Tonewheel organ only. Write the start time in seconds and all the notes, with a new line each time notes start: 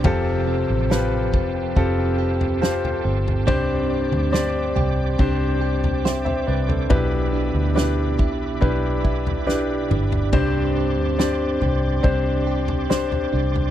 Already playing: G4 G5
0.04 F5 A5
3.48 D5 D6
6.91 E5 B5
10.34 D5 C6 D6